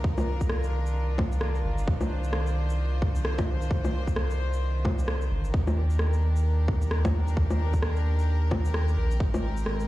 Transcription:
0.00 1.63 C2 medium
0.00 9.16 D#3 medium
0.00 5.50 D4 medium
0.00 5.50 F4 medium
0.00 1.84 A#4 medium
0.04 kick loud
0.18 low bongo medium
0.18 shaker soft
0.41 kick medium
0.41 shaker medium
0.49 cross-stick loud
0.63 shaker soft
0.86 shaker medium
1.18 kick loud
1.18 low bongo medium
1.32 shaker medium
1.41 cross-stick loud
1.55 shaker soft
1.65 1.86 G1 loud
1.78 shaker medium
1.87 3.47 C2 medium
1.87 5.50 C5 medium
1.87 kick loud
2.01 low bongo soft
2.01 shaker soft
2.24 shaker medium
2.33 cross-stick loud
2.47 shaker soft
2.70 shaker medium
3.02 kick loud
3.15 shaker medium
3.25 cross-stick loud
3.38 kick loud
3.38 low bongo medium
3.38 shaker soft
3.48 5.30 C2 medium
3.62 shaker medium
3.71 kick loud
3.85 low bongo soft
3.85 shaker soft
4.07 kick medium
4.07 shaker medium
4.16 cross-stick loud
4.30 shaker soft
4.53 shaker medium
4.85 kick loud
4.85 low bongo soft
4.99 shaker medium
5.08 cross-stick loud
5.22 shaker soft
5.31 5.52 G1 loud
5.44 shaker medium
5.54 7.13 D#2 medium
5.54 9.17 D4 medium
5.54 9.88 G4 medium
5.54 9.88 A#4 medium
5.54 kick loud
5.67 low bongo soft
5.67 shaker soft
5.90 shaker medium
5.99 cross-stick loud
6.13 shaker soft
6.36 shaker medium
6.68 kick loud
6.82 shaker medium
6.91 cross-stick loud
7.05 kick loud
7.05 low bongo medium
7.05 shaker soft
7.14 8.96 D#2 medium
7.28 shaker medium
7.37 kick loud
7.50 low bongo soft
7.50 shaker soft
7.73 kick medium
7.73 shaker medium
7.82 cross-stick loud
7.96 shaker soft
8.19 shaker medium
8.51 kick loud
8.51 low bongo medium
8.65 shaker medium
8.74 cross-stick loud
8.88 shaker soft
8.97 9.19 A#1 loud
9.11 shaker medium
9.20 9.88 G#1 loud
9.20 9.88 G#3 medium
9.20 9.88 C4 medium
9.20 kick loud
9.34 low bongo medium
9.34 shaker soft
9.57 shaker medium
9.66 cross-stick medium
9.80 shaker soft

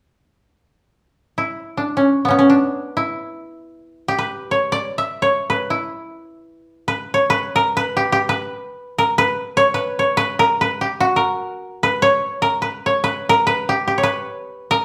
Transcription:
1.38 2.96 E4 medium
1.77 2.03 D4 medium
1.97 2.28 C#4 medium
2.25 2.30 B3 medium
2.25 2.38 C#4 medium
2.31 5.00 B3 medium
2.39 2.56 C#4 medium
2.50 4.57 D4 medium
2.97 5.23 E4 medium
4.08 6.12 G4 medium
4.18 5.49 B4 medium
4.51 4.78 C#5 medium
4.72 5.28 D5 medium
4.98 6.47 E5 medium
5.22 6.88 C#5 medium
5.50 6.87 B4 medium
5.70 7.97 E4 medium
6.88 6.94 B4 medium
7.14 8.80 C#5 medium
7.30 7.62 B4 loud
7.56 7.83 A#4 medium
7.77 8.29 B4 medium
7.97 8.12 G4 medium
8.12 8.18 G4 medium
8.29 9.04 B4 medium
8.98 9.24 A#4 medium
9.18 9.74 B4 loud
9.57 9.63 C#5 medium
9.74 10.17 B4 medium
9.99 11.65 C#5 medium
10.17 10.45 B4 medium
10.39 10.67 A#4 loud
10.61 11.22 B4 medium
10.81 10.87 G4 medium
11.00 13.12 F#4 medium
11.16 11.89 A#4 medium
11.83 12.48 B4 medium
12.02 12.86 C#5 loud
12.42 12.68 A#4 medium
12.62 12.68 B4 medium
12.86 13.97 C#5 medium
13.04 13.35 B4 medium
13.29 13.53 A#4 loud
13.47 14.03 B4 medium
13.69 13.87 G4 medium
13.88 14.85 G4 medium
13.98 14.85 C#5 medium
14.03 14.77 B4 medium
14.71 14.85 A#4 medium

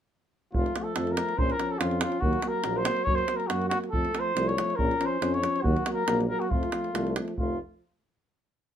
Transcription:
0.53 0.66 F1 medium
0.53 0.75 F3 soft
0.53 0.75 A3 medium
0.53 0.85 F4 medium
0.53 davul low medium
0.66 davul high soft
0.76 0.96 F3 medium
0.76 0.95 A3 soft
0.76 davul high medium
0.83 1.13 A4 medium
0.96 1.20 F2 medium
0.96 1.17 F3 medium
0.96 1.15 A3 medium
0.96 davul high medium
1.07 davul high soft
1.11 1.40 A#4 medium
1.16 1.37 F3 medium
1.16 1.36 A3 medium
1.16 davul high medium
1.29 davul high soft
1.37 1.50 A#1 medium
1.37 1.59 F3 medium
1.37 1.58 C#4 medium
1.37 1.53 C5 medium
1.37 davul low medium
1.50 1.73 A#4 medium
1.50 davul high soft
1.58 1.80 F3 medium
1.58 1.79 C#4 medium
1.58 davul high medium
1.71 1.80 A4 medium
1.79 2.04 F2 medium
1.79 2.01 F3 medium
1.79 2.00 C#4 medium
1.79 2.01 F4 medium
1.79 davul high medium
1.91 davul high soft
2.01 2.22 F3 soft
2.01 2.21 C#4 medium
2.01 2.22 F4 medium
2.01 davul high medium
2.12 davul high soft
2.20 2.34 D#2 medium
2.20 2.43 F#3 medium
2.20 2.42 A#3 medium
2.20 2.49 F#4 medium
2.20 davul low medium
2.33 davul high soft
2.42 2.63 F#3 medium
2.42 2.64 A#3 medium
2.42 davul high medium
2.48 2.78 A#4 medium
2.64 2.88 A#1 medium
2.64 2.85 F#3 medium
2.64 2.85 A#3 medium
2.64 davul high medium
2.77 3.06 C5 medium
2.85 3.06 F#3 medium
2.85 3.05 A#3 medium
2.85 davul high medium
2.96 davul high soft
3.04 3.19 F#2 medium
3.04 3.28 F#3 medium
3.04 3.27 A#3 medium
3.04 3.16 C#5 medium
3.04 davul low medium
3.15 3.38 C5 medium
3.15 davul high soft
3.28 3.49 F#3 medium
3.28 3.48 A#3 medium
3.28 davul high medium
3.36 3.49 A#4 medium
3.36 davul high soft
3.47 3.73 F#2 medium
3.47 3.71 F#3 medium
3.47 3.70 A#3 medium
3.47 3.68 F#4 medium
3.47 davul high medium
3.62 davul high soft
3.69 3.92 F#3 soft
3.69 3.91 A#3 soft
3.69 3.79 F#4 medium
3.69 davul high medium
3.84 davul high soft
3.90 4.05 F2 medium
3.90 4.13 F3 medium
3.90 4.13 A3 soft
3.90 4.21 A4 medium
3.90 davul low medium
4.05 davul high soft
4.14 4.34 F3 medium
4.14 4.34 A3 soft
4.14 davul high medium
4.19 4.50 C5 medium
4.34 4.59 C2 medium
4.34 4.55 F3 medium
4.34 4.55 A3 medium
4.34 davul high medium
4.48 4.77 C#5 medium
4.48 davul high soft
4.55 4.77 F3 medium
4.55 4.76 A3 medium
4.55 davul high medium
4.70 davul high soft
4.76 4.90 A#1 medium
4.76 4.97 F3 medium
4.76 4.98 C#4 medium
4.76 5.07 A#4 medium
4.76 davul low medium
4.91 davul high soft
4.98 5.20 F3 medium
4.98 5.20 C#4 medium
4.98 davul high soft
5.06 5.36 C5 medium
5.21 5.45 F2 medium
5.21 5.42 F3 medium
5.21 5.42 C#4 medium
5.21 davul high medium
5.34 5.63 C#5 medium
5.34 davul high soft
5.42 5.63 F3 medium
5.42 5.64 C#4 medium
5.42 davul high medium
5.56 davul high soft
5.62 5.75 D#2 medium
5.62 5.85 F#3 medium
5.62 5.85 A#3 medium
5.62 5.92 F#4 medium
5.62 davul low medium
5.77 davul high soft
5.86 6.07 F#3 medium
5.86 6.06 A#3 medium
5.86 davul high medium
5.93 6.20 A#4 medium
6.06 6.31 A#1 medium
6.06 6.29 F#3 medium
6.06 6.28 A#3 medium
6.06 davul high medium
6.21 davul high soft
6.29 6.51 F#3 medium
6.29 6.49 A#3 medium
6.29 6.41 A#4 medium
6.40 6.51 F#4 medium
6.40 davul high soft
6.50 6.64 F2 medium
6.50 6.72 F3 medium
6.50 6.72 A3 medium
6.50 7.16 F4 medium
6.50 davul low medium
6.63 davul high soft
6.72 6.94 F3 soft
6.72 6.92 A3 soft
6.72 davul high medium
6.84 davul high soft
6.93 7.18 C2 medium
6.93 7.14 F3 medium
6.93 7.15 A3 medium
6.93 davul high medium
7.07 davul high soft
7.15 7.37 F3 medium
7.15 7.36 A3 soft
7.15 davul high medium
7.28 davul high soft
7.37 7.58 F1 medium
7.37 7.59 F3 soft
7.37 7.58 A3 medium
7.37 7.58 F4 medium
7.37 davul low medium

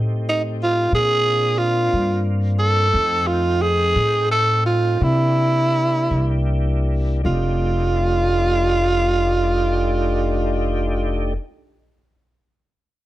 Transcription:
0.00 0.89 A2 medium
0.00 0.89 A3 medium
0.00 0.88 C4 medium
0.00 0.89 D#4 medium
0.00 0.88 G4 medium
0.29 0.42 D#4 medium
0.63 0.91 F4 medium
0.89 1.88 A#2 medium
0.89 2.89 A#3 medium
0.89 2.89 C4 medium
0.89 2.89 D4 medium
0.89 2.89 F4 medium
0.95 1.60 G#4 medium
1.58 2.24 F4 medium
1.93 2.90 G2 medium
2.59 3.29 A4 medium
2.91 3.92 F2 medium
2.91 4.98 A3 medium
2.91 4.98 C4 medium
2.91 4.98 D#4 medium
2.91 4.98 G5 medium
3.27 3.63 F4 medium
3.61 4.30 G#4 medium
3.96 4.97 A2 medium
4.31 4.63 A4 medium
4.66 5.05 F4 medium
5.00 6.07 C3 medium
5.00 7.21 A#3 medium
5.00 7.21 D4 medium
5.00 7.22 E4 medium
5.00 6.48 E4 medium
5.00 7.22 G4 medium
6.11 7.21 C2 medium
7.23 11.34 F1 medium
7.23 11.34 A3 medium
7.23 11.33 D4 medium
7.23 11.33 D#4 medium
7.23 11.35 F4 medium
7.23 11.34 G4 medium

